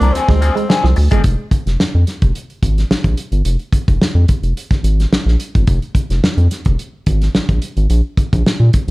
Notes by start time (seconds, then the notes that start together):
Already playing: D4
0.00 C2 F3 A#3 C4 D4 A#4, closed hi-hat
0.13 D2 F3 C4 D4 G#4, closed hi-hat
0.28 D2 G#3, muted overdriven electric guitar stroke, kick, snare
0.41 F3 C4 D4 G#4, muted clean electric guitar stroke, closed hi-hat
0.55 G#3, muted overdriven electric guitar stroke, closed hi-hat
0.69 F3 C4 D4 G#4, snare
0.84 C2 F3, snare
0.96 D2, muted clean electric guitar stroke, muted overdriven electric guitar stroke, open hi-hat
1.11 G1 F3 G#3 C4 D4 G#4, kick, closed hi-hat
1.24 F1, kick, closed hi-hat
1.51 kick, closed hi-hat
1.66 F1, snare, closed hi-hat
1.80 F2, snare
1.95 F2
2.07 snare, closed hi-hat
2.22 F1, kick, closed hi-hat
2.35 closed hi-hat
2.50 closed hi-hat
2.62 G#1, kick, closed hi-hat
2.78 snare, closed hi-hat
2.90 A#1, snare
3.04 A#1, kick, closed hi-hat
3.17 closed hi-hat
3.32 G1, closed hi-hat
3.45 F1, closed hi-hat
3.59 closed hi-hat
3.73 kick, closed hi-hat
3.88 F1, kick, closed hi-hat
4.00 F2, snare
4.15 F2
4.28 kick, closed hi-hat
4.43 F1, closed hi-hat
4.57 closed hi-hat
4.71 kick, snare, closed hi-hat
4.83 G#1, closed hi-hat
5.00 snare, closed hi-hat
5.12 A#1, snare
5.26 A#1, snare
5.40 closed hi-hat
5.55 G1, kick, closed hi-hat
5.67 F1, kick, closed hi-hat
5.82 closed hi-hat
5.95 kick, closed hi-hat
6.10 F1, snare, closed hi-hat
6.23 F2, snare
6.37 F2, closed hi-hat
6.51 snare, closed hi-hat
6.65 F1, kick, closed hi-hat
6.79 closed hi-hat
7.06 G#1, kick, closed hi-hat
7.22 snare, closed hi-hat
7.35 A#1, snare
7.49 A#1, kick, closed hi-hat
7.62 closed hi-hat
7.77 G#1, closed hi-hat
7.90 A#1, closed hi-hat
8.17 kick, closed hi-hat
8.33 A#1, kick, closed hi-hat
8.46 A#2, snare
8.60 A#2
8.73 kick, closed hi-hat